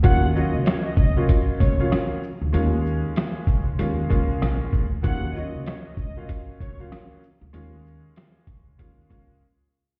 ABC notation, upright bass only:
X:1
M:4/4
L:1/16
Q:"Swing 16ths" 1/4=96
K:Ebm
V:1 name="Upright bass" clef=bass
E,,3 D,, z2 D,,2 z2 D,,2 z3 =D,, | E,,4 z2 D,,2 E,,2 ^C,,2 B,,,2 =D,,2 | E,,3 D,, z2 D,,2 z2 D,,2 z3 =D,, | E,,4 z2 D,,2 E,,2 D,,2 z4 |]